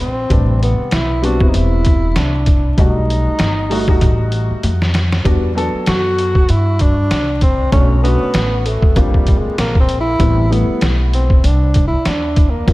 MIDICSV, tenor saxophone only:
0, 0, Header, 1, 2, 480
1, 0, Start_track
1, 0, Key_signature, 1, "minor"
1, 0, Tempo, 618557
1, 238, Time_signature, 4, 2, 24, 8
1, 9879, End_track
2, 0, Start_track
2, 0, Title_t, "Tenor saxophone"
2, 0, Program_c, 0, 66
2, 6, Note_on_c, 0, 60, 91
2, 451, Note_off_c, 0, 60, 0
2, 487, Note_on_c, 0, 59, 87
2, 727, Note_on_c, 0, 64, 97
2, 739, Note_off_c, 0, 59, 0
2, 967, Note_on_c, 0, 66, 89
2, 979, Note_off_c, 0, 64, 0
2, 1155, Note_on_c, 0, 63, 61
2, 1167, Note_off_c, 0, 66, 0
2, 1208, Note_on_c, 0, 64, 88
2, 1219, Note_off_c, 0, 63, 0
2, 1687, Note_on_c, 0, 62, 80
2, 1698, Note_off_c, 0, 64, 0
2, 2163, Note_off_c, 0, 62, 0
2, 2170, Note_on_c, 0, 63, 83
2, 3573, Note_off_c, 0, 63, 0
2, 4567, Note_on_c, 0, 66, 115
2, 5046, Note_on_c, 0, 64, 97
2, 5058, Note_off_c, 0, 66, 0
2, 5284, Note_on_c, 0, 62, 112
2, 5296, Note_off_c, 0, 64, 0
2, 5761, Note_off_c, 0, 62, 0
2, 5765, Note_on_c, 0, 60, 94
2, 5985, Note_off_c, 0, 60, 0
2, 6000, Note_on_c, 0, 61, 99
2, 6223, Note_off_c, 0, 61, 0
2, 6235, Note_on_c, 0, 59, 106
2, 6718, Note_on_c, 0, 57, 89
2, 6729, Note_off_c, 0, 59, 0
2, 6960, Note_on_c, 0, 55, 83
2, 6972, Note_off_c, 0, 57, 0
2, 7284, Note_on_c, 0, 56, 90
2, 7296, Note_off_c, 0, 55, 0
2, 7440, Note_off_c, 0, 56, 0
2, 7444, Note_on_c, 0, 58, 87
2, 7591, Note_off_c, 0, 58, 0
2, 7605, Note_on_c, 0, 60, 88
2, 7751, Note_off_c, 0, 60, 0
2, 7764, Note_on_c, 0, 64, 106
2, 8164, Note_on_c, 0, 59, 96
2, 8176, Note_off_c, 0, 64, 0
2, 8436, Note_off_c, 0, 59, 0
2, 8644, Note_on_c, 0, 60, 83
2, 8891, Note_on_c, 0, 62, 93
2, 8902, Note_off_c, 0, 60, 0
2, 9205, Note_off_c, 0, 62, 0
2, 9213, Note_on_c, 0, 64, 95
2, 9375, Note_on_c, 0, 62, 92
2, 9386, Note_off_c, 0, 64, 0
2, 9696, Note_on_c, 0, 58, 77
2, 9707, Note_off_c, 0, 62, 0
2, 9879, Note_off_c, 0, 58, 0
2, 9879, End_track
0, 0, End_of_file